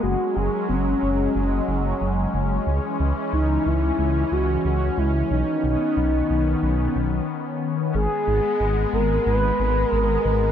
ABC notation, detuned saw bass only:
X:1
M:4/4
L:1/8
Q:1/4=91
K:G#m
V:1 name="Detuned saw bass" clef=bass
F,,, F,,, F,,, F,,, F,,, F,,, F,,, F,,, | C,, C,, C,, C,, C,, C,, C,, C,, | B,,, B,,, B,,, B,,, B,,, B,,, z2 | G,,, G,,, G,,, G,,, G,,, G,,, G,,, G,,, |]